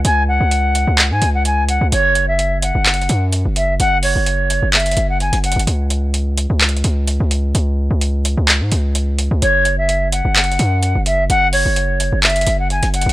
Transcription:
0.05 C#2 G#5, closed hi-hat
0.28 F#5
0.40 C#2
0.51 closed hi-hat
0.75 closed hi-hat
0.87 C#2
0.98 clap, closed hi-hat
1.11 G#2 G#5
1.22 C#2, closed hi-hat
1.34 F#5
1.45 G#5, closed hi-hat
1.69 F#5, closed hi-hat
1.81 C#2
1.92 F#1 C#5, closed hi-hat
2.15 closed hi-hat
2.28 E5
2.39 closed hi-hat
2.62 F#5, closed hi-hat
2.75 F#1
2.86 clap, closed hi-hat
2.94 closed hi-hat
3.02 closed hi-hat
3.09 F#2, closed hi-hat
3.33 closed hi-hat
3.45 F#1
3.56 E5, closed hi-hat
3.79 F#1 F#5, closed hi-hat
4.03 C#5, open hi-hat
4.16 F#1
4.26 closed hi-hat
4.50 closed hi-hat
4.62 F#1
4.73 E5, clap, closed hi-hat
4.80 closed hi-hat
4.86 closed hi-hat
4.91 closed hi-hat
4.97 F#1, closed hi-hat
5.09 F#5
5.20 G#5, closed hi-hat
5.33 F#1, closed hi-hat
5.44 F#5, closed hi-hat
5.52 closed hi-hat
5.56 F#1, closed hi-hat
5.67 C#2, closed hi-hat
5.90 closed hi-hat
6.14 closed hi-hat
6.38 closed hi-hat
6.50 C#2
6.61 clap, closed hi-hat
6.69 closed hi-hat
6.77 closed hi-hat
6.84 C#2, closed hi-hat
7.07 closed hi-hat
7.20 C#2
7.31 closed hi-hat
7.55 C#2, closed hi-hat
7.91 C#2
8.01 closed hi-hat
8.25 closed hi-hat
8.37 C#2
8.48 clap, closed hi-hat
8.61 G#2
8.72 C#2, closed hi-hat
8.95 closed hi-hat
9.19 closed hi-hat
9.31 C#2
9.42 F#1 C#5, closed hi-hat
9.65 closed hi-hat
9.78 E5
9.89 closed hi-hat
10.12 F#5, closed hi-hat
10.25 F#1
10.36 clap, closed hi-hat
10.44 closed hi-hat
10.52 closed hi-hat
10.59 F#2, closed hi-hat
10.83 closed hi-hat
10.95 F#1
11.06 E5, closed hi-hat
11.29 F#1 F#5, closed hi-hat
11.53 C#5, open hi-hat
11.66 F#1
11.76 closed hi-hat
12.00 closed hi-hat
12.12 F#1
12.23 E5, clap, closed hi-hat
12.30 closed hi-hat
12.36 closed hi-hat
12.41 closed hi-hat
12.47 F#1, closed hi-hat
12.59 F#5
12.70 G#5, closed hi-hat
12.83 F#1, closed hi-hat
12.94 F#5, closed hi-hat
13.01 closed hi-hat
13.06 F#1, closed hi-hat

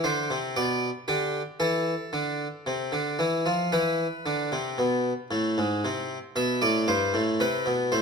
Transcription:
0.04 D3 C5
0.30 C3
0.56 B2 D5
1.08 D3 G4
1.60 E3 A4
2.13 D3
2.66 C3
2.92 D3
3.19 E3
3.46 F3
3.72 E3 B4
4.26 D3
4.52 C3
4.78 B2
5.31 A2
5.58 G#2
5.85 C3
6.36 B2 E5
6.62 A2 D5
6.88 G2 C5
7.14 A2
7.40 C3 B4
7.66 B2
7.92 A2 C5

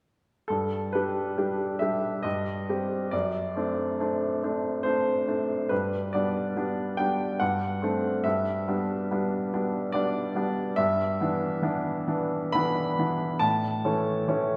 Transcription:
0.48 G2 A4
0.93 G3 D4 G4 B4
1.37 G3 D4 G4
1.79 G3 D4 G4 E5
2.23 G2 D#5
2.69 G3 C4 G4
3.11 F#2 D5
3.56 A3 C4 D4
4.00 A3 C4 D4
4.43 A3 C4 D4
4.83 A3 C4 D4 C5
5.28 A3 C4 D4
5.69 G2 B4
6.13 G3 B3 D4 D5
6.56 G3 B3 D4
6.97 G3 B3 D4 G5
7.40 G2 F#5
7.82 A3 C4 D4
8.24 G2 E5
8.68 G3 B3 D4
9.11 G3 B3 D4
9.54 G3 B3 D4
9.92 G3 B3 D4 D5
10.35 G3 B3 D4
10.76 G2 E5
11.21 E3 B3 D4
11.62 E3 B3 D4
12.08 E3 B3 D4
12.52 E3 B3 D4 B5
12.99 E3 B3 D4
13.39 A2 A5
13.85 E3 A3 C#4
14.28 E3 A3 C#4

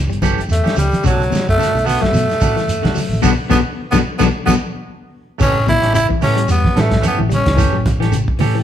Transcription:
0.10 G1 G3, closed hi-hat, shekere
0.22 E3 F#3 A3 C#4 G4, kick, closed hi-hat, high conga, low conga, shekere
0.38 closed hi-hat, shekere
0.48 E2 A3, shekere
0.53 closed hi-hat
0.64 C#4 G4, closed hi-hat, high conga, shekere
0.68 snare
0.76 C#2 F#3 G3, closed hi-hat, high conga, low conga, shekere
0.91 closed hi-hat, high conga, shekere
1.04 B1 C#3 F#3 A3 D4 F#4, kick, closed hi-hat, shekere
1.20 closed hi-hat, shekere
1.30 B2, high conga, low conga, shekere
1.35 snare, closed hi-hat
1.48 F#2 A3, kick, closed hi-hat, shekere
1.58 C#3 A3 D4 F#4, shekere
1.63 snare, closed hi-hat
1.73 B1, muted clean electric guitar stroke, shekere
1.79 closed hi-hat
1.84 A3 B3 D4 F#4, low conga, shekere
1.89 open hi-hat
2.01 F#3 A3, kick, snare, shekere
2.12 B2 F#3, high conga, shekere
2.17 closed hi-hat
2.29 snare, closed hi-hat, shekere
2.40 A1 A3 D4 F#4, kick, closed hi-hat, high conga, low conga, shekere
2.56 E3, snare, closed hi-hat, shekere
2.67 muted fingered electric bass stroke, closed hi-hat, shekere
2.82 B1 D3 D4 F#4, snare, closed hi-hat, high conga, shekere
2.95 F#3, muted fingered electric bass stroke, open hi-hat, low conga, shekere
3.09 A1, high conga, shekere
3.22 B1 B2 D3 F#3 B3 D4 F#4, kick, snare, high conga, shekere
3.49 B1 B2 D3 F#3 B3 D4 F#4, kick, snare, high conga, shekere
3.91 B1 B2 D3 F#3 B3 D4 F#4, kick, snare, high conga, shekere
4.18 B1 B2 D3 F#3 B3 D4 F#4, kick, snare, high conga, shekere
4.46 B1 B2 D3 F#3 B3 D4 F#4, kick, snare, high conga, shekere
5.38 A1 C#3 E3 A3 C#4 G4, kick, snare, crash, high conga, low conga, shekere
5.54 A1
5.67 B2 E4, kick, snare, closed hi-hat, high conga, low conga, shekere
5.82 A1 A3 C#4 G4, snare, closed hi-hat
5.94 C#3 E4, closed hi-hat, high conga, shekere
6.09 E3, kick
6.21 A2 E3 A3 C#4 G4, open hi-hat, high conga, low conga, shekere
6.36 G3, closed hi-hat
6.48 E2 G3 B3, closed hi-hat, high conga, shekere
6.65 kick, snare, high conga
6.76 A2 E3 A3 C#4, muted clean electric guitar stroke, snare, closed hi-hat, high conga, shekere
6.80 A3
6.91 F#3, kick, snare, closed hi-hat
7.01 E3 A3 C#4 G4, closed hi-hat, high conga, shekere
7.07 B3
7.18 A1 E3, high conga
7.29 G3, closed hi-hat, low conga, shekere
7.34 C#4
7.46 C#2, kick, snare, closed hi-hat
7.57 E3 A3 C#4 G4, kick, closed hi-hat, high conga, low conga, shekere
7.72 A1 F#3
7.86 kick, snare, closed hi-hat, high conga, low conga, shekere
7.99 A1 E3 A3 C#4 G4, snare, closed hi-hat
8.12 C#3, closed hi-hat, high conga, shekere
8.28 kick
8.39 A2 E3 A3 C#4 G4, open hi-hat, low conga, shekere
8.55 E3

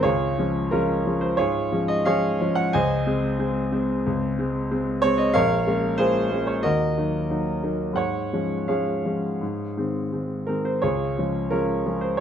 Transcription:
0.03 C#2 F4 G#4 C#5
0.38 F3 G#3 C#4
0.71 F3 G#3 C#4 F4 A#4
1.06 F3 G#3 C#4
1.21 C5
1.37 G#2 F4 G#4 C#5
1.72 F3 G#3 C#4
1.88 D#5
2.05 F3 G#3 C#4 G#4 C#5 F5
2.40 F3 G#3 C#4
2.55 F#5
2.73 C#2 C5 D#5 G#5
3.07 G#3 C4
3.39 G#3 C4
3.72 G#3 C4
4.06 C#2
4.39 G#3 C4
4.71 G#3 C4
5.02 G#3 C4 C#5
5.18 D#5
5.34 A#1 A#4 C#5 F5
5.67 G#3 A#3 C#4
5.98 G#3 A#3 C#4 F4 G#4 C5
6.32 G#3 A#3 C#4
6.47 C#5
6.63 D#2 F#4 A#4 D#5
6.98 F#3 A#3 D#4
7.30 F#3 A#3 D#4
7.63 F#3 A#3 D#4
7.93 G#2 C#5 F#5
8.33 F3 G#3 C#4
8.68 F3 G#3 C#4 G#4 C#5 F5
9.05 F3 G#3 C#4
9.41 G#2
9.77 D#3 G#3 C4
10.12 D#3 G#3 C4
10.47 D#3 G#3 C4 A#4
10.65 C5
10.82 C#2 F4 G#4 C#5
11.18 F3 G#3 C#4
11.50 F3 G#3 C#4 F4 A#4
11.86 F3 G#3 C#4
12.01 C5

